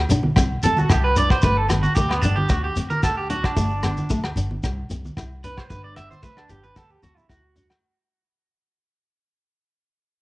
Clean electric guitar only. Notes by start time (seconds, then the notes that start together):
0.64 A4
0.78 F#4
0.91 G4
1.04 B4
1.18 D5
1.31 C5
1.43 B4
1.57 A4
1.69 muted clean electric guitar stroke
1.83 F#4
1.95 G4
2.09 B3
2.21 D4
2.36 G4
2.49 F#4
2.64 G4
2.90 A#4
3.03 A4
3.17 G4
3.30 F#4
3.44 D4
5.44 B4
5.58 C5
5.70 B4
5.84 D5
5.96 E5
6.11 C5
6.24 B4
6.37 D4
6.50 G4
6.64 B4
6.76 A4
6.91 G4
7.03 F#4
7.17 E4
7.29 F#4